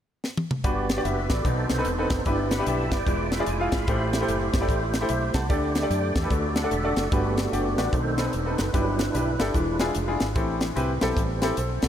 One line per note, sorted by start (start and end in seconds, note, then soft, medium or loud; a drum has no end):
0.24 snare medium
0.37 high tom medium
0.51 mid tom medium
0.64 0.99 G1 loud
0.64 1.26 G2 medium
0.64 1.44 B3 medium
0.64 0.84 D4 medium
0.64 0.84 F#4 medium
0.64 1.44 F#4 medium
0.64 1.44 G4 medium
0.64 0.84 G4 medium
0.64 0.84 B4 medium
0.64 1.04 D5 medium
0.64 kick medium
0.64 closed hi-hat medium
0.89 snare loud
0.89 closed hi-hat medium
0.97 1.18 D4 medium
0.97 1.19 F#4 medium
0.97 1.19 G4 medium
0.97 1.05 D5 medium
1.05 1.26 F#1 medium
1.05 1.29 B4 soft
1.05 1.29 E5 medium
1.05 closed hi-hat medium
1.30 1.43 A1 medium
1.30 1.45 A4 medium
1.30 1.69 B4 medium
1.30 1.68 D5 medium
1.30 kick medium
1.30 snare medium
1.30 closed hi-hat medium
1.45 1.66 B1 loud
1.45 2.07 B2 medium
1.45 2.25 B3 medium
1.45 2.25 D#4 medium
1.45 2.25 A4 medium
1.45 2.25 C5 medium
1.45 kick medium
1.45 closed hi-hat medium
1.70 1.83 C2 medium
1.70 snare medium
1.70 closed hi-hat medium
1.78 1.86 C4 medium
1.78 1.86 D#4 medium
1.78 1.86 A4 medium
1.78 1.87 B4 medium
1.85 2.07 E1 medium
1.85 closed hi-hat medium
1.98 2.15 C4 medium
1.98 2.15 D#4 medium
1.98 2.16 A4 medium
1.98 2.16 B4 medium
2.10 2.24 F#1 medium
2.10 kick loud
2.10 snare loud
2.10 closed hi-hat medium
2.25 2.60 G1 loud
2.25 2.88 G2 medium
2.25 3.06 B3 medium
2.25 2.46 D4 medium
2.25 2.46 E4 medium
2.25 3.06 E4 medium
2.25 3.06 G4 medium
2.25 2.46 G4 medium
2.25 2.47 B4 medium
2.25 2.51 D5 medium
2.25 kick medium
2.25 closed hi-hat medium
2.51 2.67 F#5 soft
2.51 2.66 B5 medium
2.51 snare loud
2.51 closed hi-hat medium
2.59 2.81 D4 medium
2.59 2.81 E4 medium
2.59 2.81 G4 medium
2.59 2.67 B4 medium
2.67 2.88 B1 medium
2.67 2.91 E5 medium
2.67 2.91 E5 soft
2.67 2.91 G5 medium
2.67 2.91 A5 medium
2.67 closed hi-hat medium
2.91 3.05 G1 medium
2.91 3.31 B4 medium
2.91 3.31 D5 medium
2.91 3.06 D5 soft
2.91 3.31 G5 medium
2.91 kick medium
2.91 snare medium
2.91 closed hi-hat medium
3.07 3.41 E1 loud
3.07 3.69 E3 medium
3.07 3.86 G#3 medium
3.07 3.86 E4 medium
3.07 3.86 F4 medium
3.07 3.32 D5 medium
3.07 kick medium
3.07 closed hi-hat medium
3.32 3.47 B4 medium
3.32 3.47 E5 medium
3.32 snare loud
3.32 closed hi-hat medium
3.39 3.48 E4 medium
3.39 3.48 F4 medium
3.39 3.48 G#4 medium
3.39 3.48 D5 medium
3.46 3.69 F1 medium
3.46 3.72 D5 medium
3.46 3.71 G#5 medium
3.46 closed hi-hat medium
3.60 3.77 E4 medium
3.60 3.77 F4 medium
3.60 3.77 G#4 medium
3.60 3.78 F5 medium
3.72 3.85 G#1 medium
3.72 4.12 F5 medium
3.72 4.11 B5 medium
3.72 kick medium
3.72 snare loud
3.72 closed hi-hat medium
3.87 4.22 A1 loud
3.87 4.50 A2 medium
3.87 5.47 A3 medium
3.87 4.08 E4 medium
3.87 5.47 E4 medium
3.87 4.08 G4 medium
3.87 5.47 G4 medium
3.87 4.08 A4 medium
3.87 4.08 C5 medium
3.87 5.47 C5 medium
3.87 kick loud
3.87 closed hi-hat medium
4.13 snare medium
4.13 closed hi-hat medium
4.20 4.42 E4 medium
4.20 4.42 G4 medium
4.20 4.43 A4 medium
4.20 4.43 C5 medium
4.28 4.50 F#1 medium
4.28 closed hi-hat medium
4.53 4.67 G1 medium
4.53 kick medium
4.53 snare loud
4.53 closed hi-hat medium
4.61 4.83 E4 medium
4.61 4.83 G4 medium
4.61 4.83 A4 medium
4.61 4.83 D5 medium
4.69 5.03 A1 medium
4.69 kick medium
4.69 closed hi-hat medium
4.94 snare medium
4.94 closed hi-hat medium
5.01 5.10 E4 medium
5.01 5.10 G4 medium
5.01 5.10 A4 medium
5.01 5.08 C5 medium
5.09 5.31 B1 medium
5.09 5.34 C5 medium
5.09 5.33 E5 medium
5.09 closed hi-hat loud
5.34 5.50 C2 medium
5.34 5.73 F#5 medium
5.34 5.73 A5 medium
5.34 kick medium
5.34 snare loud
5.34 closed hi-hat medium
5.49 5.84 D2 loud
5.49 6.11 D3 medium
5.49 6.29 A3 medium
5.49 5.70 D4 medium
5.49 6.29 D4 medium
5.49 5.70 G4 medium
5.49 6.29 G4 medium
5.49 5.70 A4 medium
5.49 5.89 D5 medium
5.49 5.70 D5 medium
5.49 kick loud
5.49 closed hi-hat medium
5.75 snare loud
5.75 closed hi-hat medium
5.82 6.04 D4 medium
5.82 6.04 G4 medium
5.82 6.04 A4 medium
5.82 6.05 D5 medium
5.90 6.12 F#2 loud
5.90 6.14 D5 soft
5.90 6.14 G5 medium
5.90 closed hi-hat medium
6.15 6.29 E2 medium
6.15 6.54 A4 soft
6.15 6.29 D5 medium
6.15 kick medium
6.15 snare loud
6.15 closed hi-hat medium
6.23 6.31 D4 medium
6.23 6.31 G4 medium
6.23 6.31 A4 medium
6.23 6.31 B4 medium
6.30 6.65 D2 medium
6.30 6.93 D3 medium
6.30 7.10 A3 medium
6.30 6.70 D4 medium
6.30 6.70 F#4 medium
6.30 6.95 D5 medium
6.30 kick medium
6.30 closed hi-hat medium
6.56 6.70 F#5 medium
6.56 snare loud
6.56 closed hi-hat medium
6.63 6.72 D4 medium
6.63 6.72 F#4 medium
6.63 6.72 A4 medium
6.63 6.72 D5 medium
6.70 6.93 E1 medium
6.70 7.09 D4 medium
6.70 7.09 F#4 medium
6.70 7.13 A4 medium
6.70 6.94 E5 medium
6.70 closed hi-hat medium
6.84 7.01 D4 medium
6.84 7.01 F#4 medium
6.84 7.01 A4 medium
6.84 7.01 D5 medium
6.96 7.10 F#1 medium
6.96 7.11 D5 medium
6.96 snare loud
6.96 closed hi-hat medium
7.11 7.46 G1 loud
7.11 7.74 G2 medium
7.11 7.89 A3 soft
7.11 7.89 B3 medium
7.11 7.38 D4 medium
7.11 7.89 D4 medium
7.11 7.89 F#4 soft
7.11 7.38 F#4 medium
7.11 7.38 G4 medium
7.11 7.52 G4 medium
7.11 7.38 B4 medium
7.11 kick loud
7.11 closed hi-hat medium
7.37 snare loud
7.37 closed hi-hat medium
7.52 7.74 F#1 medium
7.52 7.65 D4 medium
7.52 7.66 F#4 medium
7.52 7.66 G4 medium
7.52 7.79 G4 medium
7.52 7.66 D5 medium
7.52 closed hi-hat medium
7.78 7.91 A1 medium
7.78 7.93 D4 medium
7.78 7.93 F#4 medium
7.78 7.93 G4 medium
7.78 7.92 B4 medium
7.78 7.93 D5 medium
7.78 snare loud
7.78 closed hi-hat medium
7.93 8.27 B1 medium
7.93 8.55 B2 medium
7.93 8.23 D#3 medium
7.93 8.23 A3 soft
7.93 8.23 C4 medium
7.93 8.70 D#4 medium
7.93 8.33 A4 medium
7.93 8.35 C5 loud
7.93 kick medium
7.93 closed hi-hat medium
8.18 8.30 C4 medium
8.18 8.30 D#4 medium
8.18 8.30 A4 medium
8.18 8.30 B4 medium
8.18 snare loud
8.18 closed hi-hat medium
8.33 8.55 E1 medium
8.33 8.60 A4 medium
8.33 closed hi-hat medium
8.45 8.63 C4 medium
8.45 8.63 D#4 medium
8.45 8.63 A4 medium
8.45 8.63 B4 medium
8.58 8.72 F#1 medium
8.58 8.73 B4 medium
8.58 snare loud
8.58 closed hi-hat medium
8.73 9.08 G1 loud
8.73 9.35 G2 medium
8.73 9.03 F#3 soft
8.73 9.04 G3 soft
8.73 8.99 D4 medium
8.73 9.54 D4 medium
8.73 9.00 E4 medium
8.73 9.92 E4 medium
8.73 9.00 G4 medium
8.73 9.91 B4 medium
8.73 9.00 B4 medium
8.73 kick loud
8.73 closed hi-hat medium
8.99 snare loud
8.99 closed hi-hat medium
9.14 9.36 B1 medium
9.14 9.27 D4 medium
9.14 9.28 E4 medium
9.14 9.28 G4 medium
9.14 9.28 B4 medium
9.14 closed hi-hat medium
9.39 9.53 G1 medium
9.39 9.55 D4 medium
9.39 9.55 E4 medium
9.39 9.55 G4 medium
9.39 9.55 A4 loud
9.39 snare loud
9.39 closed hi-hat medium
9.54 9.89 E1 medium
9.54 10.17 E3 medium
9.54 10.17 G#3 medium
9.54 10.18 D4 medium
9.54 10.17 F4 medium
9.54 kick medium
9.54 closed hi-hat medium
9.79 9.92 D4 medium
9.79 9.92 E4 medium
9.79 9.92 F4 medium
9.79 9.92 G#4 medium
9.79 snare loud
9.79 closed hi-hat medium
9.95 10.17 F1 medium
9.95 closed hi-hat medium
10.07 10.25 D4 medium
10.07 10.25 E4 medium
10.07 10.25 F4 medium
10.07 10.25 G#4 medium
10.20 10.34 G#1 medium
10.20 snare loud
10.20 closed hi-hat medium
10.35 10.70 A1 loud
10.35 10.98 A2 medium
10.35 10.62 C4 medium
10.35 10.62 E4 medium
10.35 10.62 G4 medium
10.35 10.62 A4 medium
10.35 kick loud
10.35 closed hi-hat medium
10.61 snare loud
10.61 closed hi-hat medium
10.76 10.98 C2 loud
10.76 10.89 C4 medium
10.76 10.89 E4 medium
10.76 10.90 G4 medium
10.76 10.90 B4 medium
10.76 closed hi-hat medium
11.01 11.15 B1 medium
11.01 11.55 G3 medium
11.01 11.55 B3 soft
11.01 11.18 C4 medium
11.01 11.55 C4 medium
11.01 11.18 E4 medium
11.01 11.19 G4 medium
11.01 11.19 A4 loud
11.01 snare loud
11.01 closed hi-hat medium
11.17 11.51 A1 loud
11.17 kick medium
11.17 closed hi-hat medium
11.42 11.54 C4 medium
11.42 11.54 E4 medium
11.42 11.55 G4 medium
11.42 11.55 A4 loud
11.42 snare medium
11.42 closed hi-hat medium
11.57 11.79 B1 medium
11.57 11.82 A4 medium
11.57 11.82 C5 medium
11.57 closed hi-hat loud
11.82 11.88 C2 medium
11.82 11.88 F#4 medium
11.82 11.88 A4 medium
11.82 snare loud
11.82 closed hi-hat medium